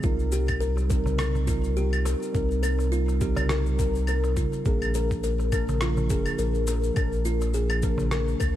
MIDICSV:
0, 0, Header, 1, 6, 480
1, 0, Start_track
1, 0, Tempo, 576923
1, 32, Time_signature, 4, 2, 24, 8
1, 7123, End_track
2, 0, Start_track
2, 0, Title_t, "Kalimba"
2, 0, Program_c, 0, 108
2, 30, Note_on_c, 0, 65, 72
2, 160, Note_off_c, 0, 65, 0
2, 269, Note_on_c, 0, 67, 74
2, 400, Note_off_c, 0, 67, 0
2, 503, Note_on_c, 0, 70, 76
2, 637, Note_off_c, 0, 70, 0
2, 746, Note_on_c, 0, 70, 73
2, 878, Note_off_c, 0, 70, 0
2, 985, Note_on_c, 0, 70, 79
2, 1118, Note_off_c, 0, 70, 0
2, 1225, Note_on_c, 0, 65, 69
2, 1358, Note_off_c, 0, 65, 0
2, 1470, Note_on_c, 0, 67, 77
2, 1600, Note_off_c, 0, 67, 0
2, 1710, Note_on_c, 0, 70, 64
2, 1840, Note_off_c, 0, 70, 0
2, 1952, Note_on_c, 0, 70, 70
2, 2081, Note_off_c, 0, 70, 0
2, 2186, Note_on_c, 0, 70, 74
2, 2318, Note_off_c, 0, 70, 0
2, 2429, Note_on_c, 0, 65, 84
2, 2559, Note_off_c, 0, 65, 0
2, 2673, Note_on_c, 0, 67, 75
2, 2802, Note_off_c, 0, 67, 0
2, 2915, Note_on_c, 0, 70, 80
2, 3043, Note_off_c, 0, 70, 0
2, 3157, Note_on_c, 0, 70, 70
2, 3283, Note_off_c, 0, 70, 0
2, 3401, Note_on_c, 0, 70, 79
2, 3526, Note_off_c, 0, 70, 0
2, 3637, Note_on_c, 0, 65, 64
2, 3763, Note_off_c, 0, 65, 0
2, 3879, Note_on_c, 0, 68, 77
2, 4004, Note_off_c, 0, 68, 0
2, 4119, Note_on_c, 0, 70, 77
2, 4245, Note_off_c, 0, 70, 0
2, 4358, Note_on_c, 0, 70, 83
2, 4484, Note_off_c, 0, 70, 0
2, 4598, Note_on_c, 0, 70, 78
2, 4724, Note_off_c, 0, 70, 0
2, 4841, Note_on_c, 0, 65, 78
2, 4966, Note_off_c, 0, 65, 0
2, 5077, Note_on_c, 0, 68, 77
2, 5204, Note_off_c, 0, 68, 0
2, 5315, Note_on_c, 0, 70, 76
2, 5443, Note_off_c, 0, 70, 0
2, 5561, Note_on_c, 0, 70, 67
2, 5686, Note_off_c, 0, 70, 0
2, 5798, Note_on_c, 0, 70, 77
2, 5924, Note_off_c, 0, 70, 0
2, 6035, Note_on_c, 0, 65, 76
2, 6162, Note_off_c, 0, 65, 0
2, 6276, Note_on_c, 0, 68, 75
2, 6403, Note_off_c, 0, 68, 0
2, 6519, Note_on_c, 0, 70, 73
2, 6644, Note_off_c, 0, 70, 0
2, 6754, Note_on_c, 0, 70, 77
2, 6882, Note_off_c, 0, 70, 0
2, 6987, Note_on_c, 0, 70, 73
2, 7119, Note_off_c, 0, 70, 0
2, 7123, End_track
3, 0, Start_track
3, 0, Title_t, "Synth keys"
3, 0, Program_c, 1, 88
3, 0, Control_c, 1, 64, 127
3, 13, Note_on_c, 1, 55, 70
3, 22, Note_on_c, 1, 60, 65
3, 32, Note_on_c, 1, 63, 72
3, 42, Note_on_c, 1, 70, 84
3, 45, Control_c, 1, 64, 0
3, 178, Control_c, 1, 64, 127
3, 718, Note_off_c, 1, 55, 0
3, 722, Note_off_c, 1, 60, 0
3, 727, Note_off_c, 1, 63, 0
3, 732, Note_off_c, 1, 70, 0
3, 737, Note_on_c, 1, 55, 83
3, 745, Note_on_c, 1, 60, 73
3, 751, Note_on_c, 1, 63, 73
3, 759, Note_on_c, 1, 70, 90
3, 896, Note_off_c, 1, 55, 0
3, 900, Note_off_c, 1, 60, 0
3, 903, Note_off_c, 1, 63, 0
3, 907, Note_off_c, 1, 70, 0
3, 1213, Note_on_c, 1, 55, 77
3, 1228, Note_on_c, 1, 60, 68
3, 1236, Note_on_c, 1, 63, 69
3, 1247, Note_on_c, 1, 70, 86
3, 1918, Note_off_c, 1, 55, 0
3, 1925, Note_off_c, 1, 60, 0
3, 1929, Note_off_c, 1, 63, 0
3, 1932, Note_on_c, 1, 55, 75
3, 1935, Note_off_c, 1, 70, 0
3, 1945, Note_on_c, 1, 60, 73
3, 1958, Note_on_c, 1, 63, 72
3, 1966, Note_on_c, 1, 70, 83
3, 2637, Note_off_c, 1, 55, 0
3, 2644, Note_off_c, 1, 60, 0
3, 2650, Note_off_c, 1, 63, 0
3, 2654, Note_off_c, 1, 70, 0
3, 2663, Note_on_c, 1, 55, 83
3, 2667, Note_on_c, 1, 60, 71
3, 2674, Note_on_c, 1, 63, 79
3, 2677, Note_on_c, 1, 70, 91
3, 2819, Note_off_c, 1, 55, 0
3, 2821, Note_off_c, 1, 60, 0
3, 2825, Note_off_c, 1, 63, 0
3, 2826, Note_off_c, 1, 70, 0
3, 3136, Note_on_c, 1, 55, 79
3, 3147, Note_on_c, 1, 60, 73
3, 3158, Note_on_c, 1, 63, 71
3, 3170, Note_on_c, 1, 70, 88
3, 3839, Note_off_c, 1, 55, 0
3, 3845, Note_off_c, 1, 60, 0
3, 3850, Note_off_c, 1, 63, 0
3, 3856, Note_off_c, 1, 70, 0
3, 3857, Note_on_c, 1, 53, 76
3, 3870, Note_on_c, 1, 58, 67
3, 3882, Note_on_c, 1, 62, 70
3, 3885, Control_c, 1, 64, 0
3, 3889, Note_on_c, 1, 70, 85
3, 4031, Control_c, 1, 64, 127
3, 4560, Note_off_c, 1, 53, 0
3, 4566, Note_off_c, 1, 58, 0
3, 4572, Note_off_c, 1, 62, 0
3, 4576, Note_off_c, 1, 70, 0
3, 4590, Note_on_c, 1, 53, 85
3, 4598, Note_on_c, 1, 58, 74
3, 4603, Note_on_c, 1, 62, 75
3, 4607, Note_on_c, 1, 70, 91
3, 4743, Note_off_c, 1, 53, 0
3, 4747, Note_off_c, 1, 58, 0
3, 4749, Note_off_c, 1, 62, 0
3, 4751, Note_off_c, 1, 70, 0
3, 5054, Note_on_c, 1, 53, 80
3, 5069, Note_on_c, 1, 58, 69
3, 5079, Note_on_c, 1, 62, 72
3, 5088, Note_on_c, 1, 70, 87
3, 5758, Note_off_c, 1, 53, 0
3, 5766, Note_off_c, 1, 58, 0
3, 5771, Note_off_c, 1, 62, 0
3, 5774, Note_on_c, 1, 53, 74
3, 5775, Note_off_c, 1, 70, 0
3, 5785, Note_on_c, 1, 58, 65
3, 5794, Note_on_c, 1, 62, 72
3, 5807, Note_on_c, 1, 70, 79
3, 6478, Note_off_c, 1, 53, 0
3, 6484, Note_off_c, 1, 58, 0
3, 6488, Note_off_c, 1, 62, 0
3, 6495, Note_off_c, 1, 70, 0
3, 6506, Note_on_c, 1, 53, 76
3, 6512, Note_on_c, 1, 58, 71
3, 6518, Note_on_c, 1, 62, 73
3, 6524, Note_on_c, 1, 70, 90
3, 6660, Note_off_c, 1, 53, 0
3, 6664, Note_off_c, 1, 58, 0
3, 6667, Note_off_c, 1, 62, 0
3, 6670, Note_off_c, 1, 70, 0
3, 7123, End_track
4, 0, Start_track
4, 0, Title_t, "Sub bass"
4, 0, Program_c, 2, 38
4, 30, Note_on_c, 2, 36, 93
4, 1791, Note_off_c, 2, 36, 0
4, 1954, Note_on_c, 2, 36, 99
4, 3713, Note_off_c, 2, 36, 0
4, 3877, Note_on_c, 2, 34, 100
4, 5078, Note_on_c, 2, 29, 94
4, 5091, Note_off_c, 2, 34, 0
4, 5261, Note_off_c, 2, 29, 0
4, 5314, Note_on_c, 2, 34, 97
4, 5750, Note_off_c, 2, 34, 0
4, 5796, Note_on_c, 2, 34, 97
4, 6951, Note_off_c, 2, 34, 0
4, 6995, Note_on_c, 2, 38, 83
4, 7123, Note_off_c, 2, 38, 0
4, 7123, End_track
5, 0, Start_track
5, 0, Title_t, "Darbuka"
5, 640, Note_on_c, 9, 62, 66
5, 723, Note_off_c, 9, 62, 0
5, 880, Note_on_c, 9, 63, 67
5, 882, Note_on_c, 9, 64, 80
5, 963, Note_off_c, 9, 63, 0
5, 965, Note_off_c, 9, 64, 0
5, 1124, Note_on_c, 9, 62, 58
5, 1125, Note_on_c, 9, 64, 82
5, 1207, Note_off_c, 9, 62, 0
5, 1208, Note_off_c, 9, 64, 0
5, 1706, Note_on_c, 9, 62, 48
5, 1710, Note_on_c, 9, 63, 82
5, 1789, Note_off_c, 9, 62, 0
5, 1793, Note_off_c, 9, 63, 0
5, 2319, Note_on_c, 9, 63, 55
5, 2402, Note_off_c, 9, 63, 0
5, 2565, Note_on_c, 9, 62, 60
5, 2648, Note_off_c, 9, 62, 0
5, 2799, Note_on_c, 9, 63, 80
5, 2800, Note_on_c, 9, 64, 90
5, 2883, Note_off_c, 9, 63, 0
5, 2883, Note_off_c, 9, 64, 0
5, 3525, Note_on_c, 9, 63, 65
5, 3608, Note_off_c, 9, 63, 0
5, 3631, Note_on_c, 9, 62, 53
5, 3632, Note_on_c, 9, 64, 79
5, 3714, Note_off_c, 9, 62, 0
5, 3715, Note_off_c, 9, 64, 0
5, 3769, Note_on_c, 9, 62, 46
5, 3852, Note_off_c, 9, 62, 0
5, 4488, Note_on_c, 9, 62, 58
5, 4571, Note_off_c, 9, 62, 0
5, 4733, Note_on_c, 9, 64, 81
5, 4734, Note_on_c, 9, 63, 67
5, 4816, Note_off_c, 9, 64, 0
5, 4817, Note_off_c, 9, 63, 0
5, 4970, Note_on_c, 9, 64, 99
5, 4974, Note_on_c, 9, 62, 54
5, 5053, Note_off_c, 9, 64, 0
5, 5057, Note_off_c, 9, 62, 0
5, 5554, Note_on_c, 9, 62, 47
5, 5554, Note_on_c, 9, 63, 73
5, 5637, Note_off_c, 9, 63, 0
5, 5638, Note_off_c, 9, 62, 0
5, 6171, Note_on_c, 9, 63, 58
5, 6254, Note_off_c, 9, 63, 0
5, 6407, Note_on_c, 9, 62, 60
5, 6491, Note_off_c, 9, 62, 0
5, 6636, Note_on_c, 9, 64, 93
5, 6638, Note_on_c, 9, 63, 71
5, 6720, Note_off_c, 9, 64, 0
5, 6721, Note_off_c, 9, 63, 0
5, 7123, End_track
6, 0, Start_track
6, 0, Title_t, "Drums"
6, 23, Note_on_c, 9, 82, 37
6, 32, Note_on_c, 9, 36, 123
6, 106, Note_off_c, 9, 82, 0
6, 115, Note_off_c, 9, 36, 0
6, 161, Note_on_c, 9, 82, 21
6, 244, Note_off_c, 9, 82, 0
6, 264, Note_on_c, 9, 82, 77
6, 348, Note_off_c, 9, 82, 0
6, 402, Note_on_c, 9, 75, 75
6, 402, Note_on_c, 9, 82, 32
6, 408, Note_on_c, 9, 36, 57
6, 485, Note_off_c, 9, 75, 0
6, 485, Note_off_c, 9, 82, 0
6, 491, Note_off_c, 9, 36, 0
6, 508, Note_on_c, 9, 82, 44
6, 592, Note_off_c, 9, 82, 0
6, 645, Note_on_c, 9, 82, 21
6, 728, Note_off_c, 9, 82, 0
6, 749, Note_on_c, 9, 82, 71
6, 753, Note_on_c, 9, 36, 98
6, 832, Note_off_c, 9, 82, 0
6, 836, Note_off_c, 9, 36, 0
6, 885, Note_on_c, 9, 82, 33
6, 969, Note_off_c, 9, 82, 0
6, 988, Note_on_c, 9, 37, 73
6, 988, Note_on_c, 9, 75, 72
6, 989, Note_on_c, 9, 82, 42
6, 1072, Note_off_c, 9, 37, 0
6, 1072, Note_off_c, 9, 75, 0
6, 1072, Note_off_c, 9, 82, 0
6, 1124, Note_on_c, 9, 82, 22
6, 1207, Note_off_c, 9, 82, 0
6, 1226, Note_on_c, 9, 82, 78
6, 1231, Note_on_c, 9, 36, 104
6, 1310, Note_off_c, 9, 82, 0
6, 1315, Note_off_c, 9, 36, 0
6, 1363, Note_on_c, 9, 82, 31
6, 1446, Note_off_c, 9, 82, 0
6, 1469, Note_on_c, 9, 82, 44
6, 1553, Note_off_c, 9, 82, 0
6, 1605, Note_on_c, 9, 75, 75
6, 1605, Note_on_c, 9, 82, 21
6, 1688, Note_off_c, 9, 75, 0
6, 1689, Note_off_c, 9, 82, 0
6, 1711, Note_on_c, 9, 82, 72
6, 1794, Note_off_c, 9, 82, 0
6, 1850, Note_on_c, 9, 82, 29
6, 1933, Note_off_c, 9, 82, 0
6, 1951, Note_on_c, 9, 82, 40
6, 1952, Note_on_c, 9, 36, 112
6, 2034, Note_off_c, 9, 82, 0
6, 2035, Note_off_c, 9, 36, 0
6, 2088, Note_on_c, 9, 82, 22
6, 2171, Note_off_c, 9, 82, 0
6, 2189, Note_on_c, 9, 75, 70
6, 2190, Note_on_c, 9, 82, 79
6, 2273, Note_off_c, 9, 75, 0
6, 2273, Note_off_c, 9, 82, 0
6, 2326, Note_on_c, 9, 82, 31
6, 2410, Note_off_c, 9, 82, 0
6, 2432, Note_on_c, 9, 82, 48
6, 2516, Note_off_c, 9, 82, 0
6, 2567, Note_on_c, 9, 82, 23
6, 2650, Note_off_c, 9, 82, 0
6, 2668, Note_on_c, 9, 82, 77
6, 2672, Note_on_c, 9, 36, 99
6, 2752, Note_off_c, 9, 82, 0
6, 2755, Note_off_c, 9, 36, 0
6, 2803, Note_on_c, 9, 75, 77
6, 2803, Note_on_c, 9, 82, 34
6, 2886, Note_off_c, 9, 75, 0
6, 2887, Note_off_c, 9, 82, 0
6, 2906, Note_on_c, 9, 37, 78
6, 2907, Note_on_c, 9, 82, 46
6, 2989, Note_off_c, 9, 37, 0
6, 2990, Note_off_c, 9, 82, 0
6, 3046, Note_on_c, 9, 82, 22
6, 3129, Note_off_c, 9, 82, 0
6, 3151, Note_on_c, 9, 82, 83
6, 3154, Note_on_c, 9, 36, 106
6, 3234, Note_off_c, 9, 82, 0
6, 3237, Note_off_c, 9, 36, 0
6, 3286, Note_on_c, 9, 82, 35
6, 3369, Note_off_c, 9, 82, 0
6, 3388, Note_on_c, 9, 75, 75
6, 3389, Note_on_c, 9, 82, 44
6, 3472, Note_off_c, 9, 75, 0
6, 3472, Note_off_c, 9, 82, 0
6, 3527, Note_on_c, 9, 82, 21
6, 3610, Note_off_c, 9, 82, 0
6, 3631, Note_on_c, 9, 82, 74
6, 3635, Note_on_c, 9, 36, 60
6, 3715, Note_off_c, 9, 82, 0
6, 3718, Note_off_c, 9, 36, 0
6, 3766, Note_on_c, 9, 82, 31
6, 3849, Note_off_c, 9, 82, 0
6, 3870, Note_on_c, 9, 82, 43
6, 3875, Note_on_c, 9, 36, 125
6, 3953, Note_off_c, 9, 82, 0
6, 3958, Note_off_c, 9, 36, 0
6, 4009, Note_on_c, 9, 75, 72
6, 4010, Note_on_c, 9, 82, 23
6, 4092, Note_off_c, 9, 75, 0
6, 4093, Note_off_c, 9, 82, 0
6, 4111, Note_on_c, 9, 82, 74
6, 4194, Note_off_c, 9, 82, 0
6, 4250, Note_on_c, 9, 82, 33
6, 4252, Note_on_c, 9, 36, 61
6, 4333, Note_off_c, 9, 82, 0
6, 4335, Note_off_c, 9, 36, 0
6, 4355, Note_on_c, 9, 82, 49
6, 4438, Note_off_c, 9, 82, 0
6, 4491, Note_on_c, 9, 82, 22
6, 4574, Note_off_c, 9, 82, 0
6, 4594, Note_on_c, 9, 75, 72
6, 4594, Note_on_c, 9, 82, 80
6, 4597, Note_on_c, 9, 36, 110
6, 4677, Note_off_c, 9, 75, 0
6, 4678, Note_off_c, 9, 82, 0
6, 4680, Note_off_c, 9, 36, 0
6, 4730, Note_on_c, 9, 82, 34
6, 4813, Note_off_c, 9, 82, 0
6, 4832, Note_on_c, 9, 37, 74
6, 4832, Note_on_c, 9, 82, 45
6, 4915, Note_off_c, 9, 37, 0
6, 4915, Note_off_c, 9, 82, 0
6, 4966, Note_on_c, 9, 82, 22
6, 5049, Note_off_c, 9, 82, 0
6, 5071, Note_on_c, 9, 82, 82
6, 5077, Note_on_c, 9, 36, 109
6, 5154, Note_off_c, 9, 82, 0
6, 5161, Note_off_c, 9, 36, 0
6, 5205, Note_on_c, 9, 75, 73
6, 5205, Note_on_c, 9, 82, 35
6, 5288, Note_off_c, 9, 75, 0
6, 5289, Note_off_c, 9, 82, 0
6, 5312, Note_on_c, 9, 82, 48
6, 5395, Note_off_c, 9, 82, 0
6, 5444, Note_on_c, 9, 82, 22
6, 5527, Note_off_c, 9, 82, 0
6, 5549, Note_on_c, 9, 82, 79
6, 5632, Note_off_c, 9, 82, 0
6, 5686, Note_on_c, 9, 82, 33
6, 5770, Note_off_c, 9, 82, 0
6, 5792, Note_on_c, 9, 75, 66
6, 5792, Note_on_c, 9, 82, 39
6, 5796, Note_on_c, 9, 36, 124
6, 5875, Note_off_c, 9, 75, 0
6, 5875, Note_off_c, 9, 82, 0
6, 5879, Note_off_c, 9, 36, 0
6, 5926, Note_on_c, 9, 82, 23
6, 6009, Note_off_c, 9, 82, 0
6, 6032, Note_on_c, 9, 82, 77
6, 6115, Note_off_c, 9, 82, 0
6, 6166, Note_on_c, 9, 82, 34
6, 6250, Note_off_c, 9, 82, 0
6, 6270, Note_on_c, 9, 82, 49
6, 6354, Note_off_c, 9, 82, 0
6, 6404, Note_on_c, 9, 75, 79
6, 6404, Note_on_c, 9, 82, 23
6, 6487, Note_off_c, 9, 75, 0
6, 6488, Note_off_c, 9, 82, 0
6, 6508, Note_on_c, 9, 82, 72
6, 6516, Note_on_c, 9, 36, 93
6, 6592, Note_off_c, 9, 82, 0
6, 6599, Note_off_c, 9, 36, 0
6, 6647, Note_on_c, 9, 82, 34
6, 6730, Note_off_c, 9, 82, 0
6, 6750, Note_on_c, 9, 37, 73
6, 6751, Note_on_c, 9, 82, 41
6, 6833, Note_off_c, 9, 37, 0
6, 6834, Note_off_c, 9, 82, 0
6, 6887, Note_on_c, 9, 82, 22
6, 6970, Note_off_c, 9, 82, 0
6, 6992, Note_on_c, 9, 75, 73
6, 6992, Note_on_c, 9, 82, 81
6, 6996, Note_on_c, 9, 36, 101
6, 7075, Note_off_c, 9, 75, 0
6, 7075, Note_off_c, 9, 82, 0
6, 7079, Note_off_c, 9, 36, 0
6, 7123, End_track
0, 0, End_of_file